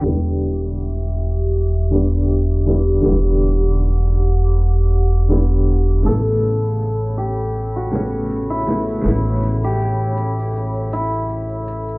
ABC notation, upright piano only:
X:1
M:4/4
L:1/8
Q:"Swing 16ths" 1/4=80
K:Edor
V:1 name="Upright piano"
[D,G,B,E]4- [D,G,B,E] [D,G,B,D]2 [D,G,B,E] | [D,G,B,E]6 [D,G,B,E]2 | [C,A,B,E]4- [C,A,B,E] [C,A,B,C]2 [C,A,B,E] | [C,A,B,E]6 z2 |]